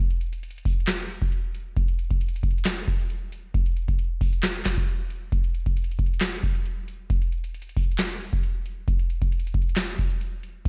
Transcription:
0.11 closed hi-hat
0.21 closed hi-hat
0.33 closed hi-hat
0.43 closed hi-hat
0.51 closed hi-hat
0.58 closed hi-hat
0.65 kick, closed hi-hat, open hi-hat
0.73 closed hi-hat
0.80 closed hi-hat
0.87 snare, clap, closed hi-hat
0.99 closed hi-hat
1.10 closed hi-hat
1.22 kick, closed hi-hat
1.32 closed hi-hat
1.54 closed hi-hat
1.76 kick, closed hi-hat
1.88 closed hi-hat
1.99 closed hi-hat
2.10 kick, closed hi-hat
2.21 closed hi-hat
2.28 closed hi-hat
2.36 closed hi-hat
2.43 kick, closed hi-hat
2.51 closed hi-hat
2.58 closed hi-hat
2.65 snare, clap, closed hi-hat
2.77 closed hi-hat
2.88 kick, closed hi-hat
2.99 closed hi-hat
3.10 closed hi-hat
3.32 closed hi-hat
3.54 kick, closed hi-hat
3.66 closed hi-hat
3.77 closed hi-hat
3.88 kick, closed hi-hat
3.99 closed hi-hat
4.21 kick, open hi-hat
4.33 closed hi-hat
4.43 snare, clap, closed hi-hat
4.55 closed hi-hat
4.65 kick, snare, clap, closed hi-hat
4.77 kick, closed hi-hat
4.88 closed hi-hat
5.10 closed hi-hat
5.32 kick, closed hi-hat
5.44 closed hi-hat
5.54 closed hi-hat
5.66 kick, closed hi-hat
5.77 closed hi-hat
5.84 closed hi-hat
5.92 closed hi-hat
5.99 kick, closed hi-hat
6.06 closed hi-hat
6.14 closed hi-hat
6.21 snare, clap, closed hi-hat
6.33 closed hi-hat
6.43 kick, closed hi-hat
6.55 closed hi-hat
6.66 closed hi-hat
6.88 closed hi-hat
7.10 kick, closed hi-hat
7.22 closed hi-hat
7.32 closed hi-hat
7.44 closed hi-hat
7.54 closed hi-hat
7.62 closed hi-hat
7.69 closed hi-hat
7.77 kick, closed hi-hat, open hi-hat
7.84 closed hi-hat
7.91 closed hi-hat
7.98 snare, clap, closed hi-hat
8.11 closed hi-hat
8.21 closed hi-hat
8.33 kick, closed hi-hat
8.43 closed hi-hat
8.66 closed hi-hat
8.88 kick, closed hi-hat
8.99 closed hi-hat
9.10 closed hi-hat
9.22 kick, closed hi-hat
9.32 closed hi-hat
9.39 closed hi-hat
9.47 closed hi-hat
9.54 kick, closed hi-hat
9.62 closed hi-hat
9.69 closed hi-hat
9.76 snare, clap, closed hi-hat
9.88 closed hi-hat
9.99 kick, closed hi-hat
10.11 closed hi-hat
10.21 closed hi-hat
10.43 closed hi-hat
10.65 kick, closed hi-hat

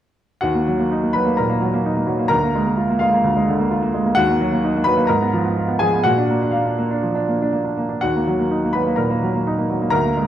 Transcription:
0.41 D#2 F#4 F#5
0.55 A#3
0.68 F#3
0.79 A#3
0.92 D#4
1.03 A#3
1.13 F#3 B4 B5
1.26 A#3
1.37 A#2 A#4 A#5
1.49 A#3
1.61 F#3
1.74 A#3
1.86 D#4
1.97 A#3
2.07 F#3
2.19 A#3
2.28 D2 A#4 A#5
2.43 A#3
2.55 G#3
2.66 A#3
2.77 F4
2.90 A#3
2.99 G#3 F4 F5
3.13 A#3
3.24 D2
3.37 G#3
3.48 D3
3.59 A#3
3.71 F4
3.82 A#3
3.94 G#3
4.06 A#3
4.15 D#2 F#4 F#5
4.30 A#3
4.41 F#3
4.52 A#3
4.64 D#4
4.76 A#3
4.84 F#3 B4 B5
4.97 A#3
5.07 G#2 A#4 A#5
5.22 B3
5.33 F3
5.45 B3
5.57 F4
5.68 B3
5.79 F3 G#4 G#5
5.94 B3
6.04 A#2 F#4 F#5
6.18 D4
6.30 A#3
6.42 D4
6.51 A#3 F4 F5
6.65 D4
6.78 A#3
6.91 D4
7.03 F3
7.15 D4
7.28 A#3
7.42 D4
7.52 A#3
7.65 D4
7.77 A#3
7.89 D4
8.01 D#2 F#4 F#5
8.16 A#3
8.28 F#3
8.39 A#3
8.51 D#4
8.64 A#3
8.73 F#3 B4 B5
8.87 A#3
8.96 A#2 A#4 A#5
9.10 A#3
9.23 F#3
9.35 A#3
9.47 D#4
9.58 A#3
9.70 F#3
9.82 A#3
9.90 D2 A#4 A#5
10.05 A#3
10.17 G#3

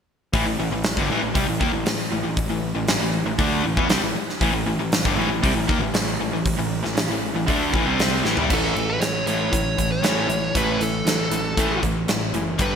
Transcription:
0.33 A1 A2 E3, kick, open hi-hat
0.46 A1 A2 E3
0.58 A1 A2 E3
0.71 A1 A2 E3
0.84 snare, open hi-hat
0.97 G1 G2 D3, kick
1.08 A1 A2 E3
1.22 A1 A2 E3
1.34 C2 C3 G3, kick, open hi-hat
1.47 A1 A2 E3
1.60 D#2 D#3 A#3, kick
1.72 A1 A2 E3
1.86 A1 A2 E3, snare, open hi-hat
2.12 A1 A2 E3
2.24 A1 A2 E3
2.37 kick, open hi-hat
2.50 A1 A2 E3
2.75 A1 A2 E3
2.88 A1 A2 E3, snare, open hi-hat
3.00 A1 A2 E3
3.25 A1 A2 E3
3.39 D2 D3 A3 D4, kick, open hi-hat
3.64 A1 A2 E3
3.77 E2 E3 B3, kick
3.89 C2 C3 G3, snare, open hi-hat
4.02 A1 A2 E3
4.15 muted picked electric bass stroke, muted overdriven electric guitar stroke
4.29 snare
4.41 A1 A2 E3, kick, open hi-hat
4.53 A1 A2 E3
4.66 A1 A2 E3
4.78 A1 A2 E3
4.92 snare, open hi-hat
5.05 G1 G2 D3, kick
5.16 A1 A2 E3
5.28 A1 A2 E3
5.43 C2 C3 G3, kick, open hi-hat
5.54 A1 A2 E3
5.68 D#2 D#3 A#3, kick
5.80 A1 A2 E3
5.93 A1 A2 E3, snare, open hi-hat
6.20 A1 A2 E3
6.33 A1 A2 E3
6.46 kick, open hi-hat
6.58 A1 A2 E3
6.84 A1 A2 E3, snare
6.97 A1 A2 E3, snare, open hi-hat
7.09 A1 A2 E3
7.35 A1 A2 E3
7.47 D2 D3 A3 D4, kick, open hi-hat
7.73 A1 A2 E3, kick
7.87 C2 C3 G3 C4
7.99 snare, open hi-hat
8.25 A1 A2 E3, snare
8.37 C2 C3 G3, floor tom
8.50 A1 A2 E3 A3 A4, kick, crash
8.75 A1 A2 E3, closed hi-hat
8.90 B4
9.01 A1 A2 E3 C#5, snare, closed hi-hat
9.26 A1 A2 E3 A3 C#5, closed hi-hat
9.52 A1 A2 E3 C#5, kick, closed hi-hat
9.78 A1 A2 E3, kick, closed hi-hat
9.92 C#5
10.02 A1 A2 E3 A3, snare, closed hi-hat
10.28 A1 A2 E3, closed hi-hat
10.55 A1 A2 E3 A3 B4, kick, closed hi-hat
10.79 A1 A2 E3 A4, closed hi-hat
11.05 A1 A2 E3, snare, closed hi-hat
11.30 A1 A2 E3, closed hi-hat
11.57 A1 A2 E3 A3, kick, closed hi-hat
11.82 A1 A2 E3, kick, closed hi-hat
12.07 A1 A2 E3, snare, closed hi-hat
12.33 F#1 A2 E3, closed hi-hat
12.58 G1 G2 D3 G3 B4, kick, closed hi-hat

